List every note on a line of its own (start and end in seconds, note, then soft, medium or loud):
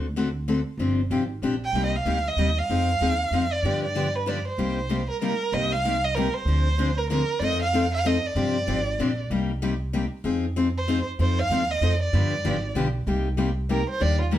0.00 0.60 D2 medium
0.16 0.27 D3 medium
0.16 0.28 A3 medium
0.16 0.28 C4 medium
0.16 0.28 F#4 medium
0.16 0.28 A4 medium
0.48 0.59 D3 medium
0.48 0.59 A3 medium
0.48 0.59 C4 medium
0.48 0.59 F#4 medium
0.48 0.60 A4 medium
0.77 1.04 G1 medium
0.77 1.00 C3 medium
0.77 1.00 F3 medium
0.77 1.00 C4 medium
0.77 1.00 D4 medium
0.77 1.00 G4 medium
1.10 1.37 G#1 medium
1.10 1.22 C3 medium
1.10 1.22 F3 medium
1.10 1.22 C4 medium
1.10 1.22 D4 medium
1.10 1.22 G4 medium
1.42 1.69 A#1 medium
1.42 1.54 C3 medium
1.42 1.54 F3 medium
1.42 1.54 C4 medium
1.42 1.54 D4 medium
1.42 1.54 G4 medium
1.65 1.85 G5 medium
1.73 1.98 C2 medium
1.73 1.94 C3 medium
1.73 1.95 G3 medium
1.73 1.95 A#3 medium
1.73 1.95 D#4 medium
1.73 1.95 G4 medium
1.86 1.97 D#5 medium
1.96 2.29 F5 medium
2.05 2.32 D2 medium
2.05 2.17 C3 medium
2.05 2.17 G3 medium
2.05 2.17 A#3 medium
2.05 2.17 D#4 medium
2.05 2.17 G4 medium
2.28 2.60 D#5 medium
2.36 2.64 D#2 medium
2.36 2.49 C3 medium
2.36 2.49 G3 medium
2.36 2.49 A#3 medium
2.36 2.49 D#4 medium
2.36 2.49 G4 medium
2.58 3.54 F5 loud
2.69 2.94 F2 medium
2.69 2.89 F3 medium
2.69 2.90 C4 medium
2.69 2.90 D#4 medium
2.69 2.90 G#4 medium
3.00 3.27 D#2 medium
3.00 3.12 F3 medium
3.00 3.12 C4 medium
3.00 3.12 D#4 medium
3.00 3.12 G#4 medium
3.31 3.58 F2 medium
3.31 3.43 F3 medium
3.31 3.44 C4 medium
3.31 3.44 D#4 medium
3.31 3.44 G#4 medium
3.52 3.83 D5 medium
3.63 4.39 G2 medium
3.63 3.84 D3 medium
3.63 3.84 F3 medium
3.63 3.84 B3 medium
3.63 3.85 D4 medium
3.63 3.85 G4 medium
3.84 4.17 D5 medium
3.95 4.06 D3 medium
3.95 4.06 F3 medium
3.95 4.06 B3 medium
3.95 4.07 D4 medium
3.95 4.07 G4 medium
4.15 4.30 B4 medium
4.26 4.37 D3 medium
4.26 4.38 F3 medium
4.26 4.38 B3 medium
4.26 4.38 D4 medium
4.26 4.38 G4 medium
4.26 4.47 D5 medium
4.48 5.06 C5 medium
4.58 5.08 C2 medium
4.58 4.78 C3 medium
4.58 4.79 G3 medium
4.58 4.79 A#3 medium
4.58 4.79 D#4 medium
4.58 4.79 G4 medium
4.89 5.00 C3 medium
4.89 5.01 G3 medium
4.89 5.01 A#3 medium
4.89 5.01 D#4 medium
4.89 5.01 G4 medium
5.10 5.21 A#4 medium
5.21 5.32 C3 medium
5.21 5.33 G3 medium
5.21 5.33 A#3 medium
5.21 5.33 D#4 medium
5.21 5.33 G4 medium
5.21 5.55 A#4 medium
5.52 6.28 C2 medium
5.52 5.73 C3 medium
5.52 5.73 G3 medium
5.52 5.73 A#3 medium
5.52 5.73 D#4 medium
5.52 5.74 G4 medium
5.52 5.74 D#5 loud
5.72 6.06 F5 loud
5.85 5.96 C3 medium
5.85 5.96 G3 medium
5.85 5.96 A#3 medium
5.85 5.96 D#4 medium
5.85 5.96 G4 medium
6.04 6.16 D#5 medium
6.15 6.27 C3 medium
6.15 6.27 G3 medium
6.15 6.27 A#3 medium
6.15 6.27 D#4 medium
6.15 6.28 G4 medium
6.15 6.35 A#4 medium
6.34 6.99 C5 medium
6.45 7.22 D2 medium
6.45 6.67 D3 medium
6.45 6.68 F3 medium
6.45 6.68 C4 medium
6.45 6.68 D4 medium
6.45 6.68 G#4 medium
6.78 6.89 D3 medium
6.78 6.90 F3 medium
6.78 6.90 C4 medium
6.78 6.90 D4 medium
6.78 6.90 G#4 medium
6.97 7.09 A#4 medium
7.10 7.21 D3 medium
7.10 7.21 F3 medium
7.10 7.22 C4 medium
7.10 7.22 D4 medium
7.10 7.22 G#4 medium
7.10 7.41 A#4 medium
7.39 8.16 F2 medium
7.39 7.62 F3 medium
7.39 7.62 C4 medium
7.39 7.62 D#4 medium
7.39 7.62 A4 medium
7.39 7.45 D5 medium
7.44 7.62 D#5 loud
7.62 7.91 F5 medium
7.73 7.84 F3 medium
7.73 7.84 C4 medium
7.73 7.85 D#4 medium
7.73 7.85 A4 medium
7.94 8.08 F5 medium
8.05 8.16 F3 medium
8.05 8.16 C4 medium
8.05 8.16 D#4 medium
8.05 8.16 A4 loud
8.05 8.28 D#5 medium
8.26 9.19 D5 medium
8.35 8.61 G2 medium
8.35 8.56 C3 medium
8.35 8.56 F3 medium
8.35 8.56 C4 medium
8.35 8.56 D4 medium
8.35 8.56 G4 medium
8.67 8.94 G#1 medium
8.67 8.78 C3 medium
8.67 8.78 F3 medium
8.67 8.79 C4 medium
8.67 8.79 D4 medium
8.67 8.79 G4 medium
8.99 9.25 A#1 medium
8.99 9.10 C3 medium
8.99 9.10 F3 medium
8.99 9.10 C4 medium
8.99 9.11 D4 medium
8.99 9.11 G4 medium
9.30 10.05 C2 medium
9.30 9.51 C3 medium
9.30 9.51 G3 medium
9.30 9.51 A#3 medium
9.30 9.51 D#4 medium
9.30 9.51 G4 medium
9.62 9.73 C3 medium
9.62 9.73 G3 medium
9.62 9.73 A#3 medium
9.62 9.73 D#4 medium
9.62 9.73 G4 medium
9.93 10.04 C3 medium
9.93 10.04 G3 medium
9.93 10.04 A#3 medium
9.93 10.04 D#4 medium
9.93 10.05 G4 medium
10.24 10.99 F2 medium
10.24 10.44 F3 medium
10.24 10.45 C4 medium
10.24 10.45 D#4 medium
10.24 10.45 G#4 medium
10.56 10.67 F3 medium
10.56 10.67 C4 medium
10.56 10.67 D#4 medium
10.56 10.68 G#4 medium
10.77 11.05 C5 medium
10.88 10.98 F3 medium
10.88 10.99 C4 medium
10.88 10.99 D#4 medium
10.88 10.99 G#4 medium
11.19 11.44 F2 medium
11.19 11.39 F3 medium
11.19 11.39 C4 medium
11.19 11.39 D#4 medium
11.19 11.39 A4 medium
11.19 11.41 C5 medium
11.39 11.72 F5 loud
11.50 11.76 D#2 medium
11.50 11.61 F3 medium
11.50 11.62 C4 medium
11.50 11.62 D#4 medium
11.50 11.62 A4 medium
11.71 12.01 D#5 loud
11.81 12.08 F2 medium
11.81 11.93 F3 medium
11.81 11.93 C4 medium
11.81 11.93 D#4 medium
11.81 11.93 A4 medium
12.02 12.73 D5 medium
12.13 12.38 G2 medium
12.13 12.33 D3 medium
12.13 12.33 F3 medium
12.13 12.33 B3 medium
12.13 12.34 D4 medium
12.13 12.34 G4 medium
12.44 12.71 G#1 medium
12.44 12.55 D3 medium
12.44 12.55 F3 medium
12.44 12.55 B3 medium
12.44 12.56 D4 medium
12.44 12.56 G4 medium
12.75 13.02 B1 medium
12.75 12.86 D3 medium
12.75 12.87 F3 medium
12.75 12.87 B3 medium
12.75 12.87 D4 medium
12.75 12.87 G4 medium
13.06 13.82 C2 medium
13.06 13.27 C3 medium
13.06 13.27 G3 medium
13.06 13.27 A#3 medium
13.06 13.28 D#4 medium
13.06 13.28 G4 medium
13.37 13.49 C3 medium
13.37 13.49 G3 medium
13.37 13.49 A#3 medium
13.37 13.49 D#4 medium
13.37 13.49 G4 medium
13.69 13.80 C3 medium
13.69 13.80 G3 medium
13.69 13.81 A#3 medium
13.69 13.81 D#4 medium
13.69 13.81 G4 medium
13.69 13.88 A#4 medium
13.90 14.03 C5 medium
14.00 14.38 D#2 medium
14.00 14.21 D#3 medium
14.00 14.21 G3 medium
14.00 14.21 A#3 medium
14.00 14.21 D4 medium
14.00 14.21 G4 medium
14.00 14.21 D5 medium
14.21 14.35 F4 soft
14.31 14.38 D#3 medium
14.31 14.38 G3 medium
14.31 14.38 A#3 medium
14.31 14.38 D4 medium
14.31 14.38 G4 medium
14.31 14.38 A#4 medium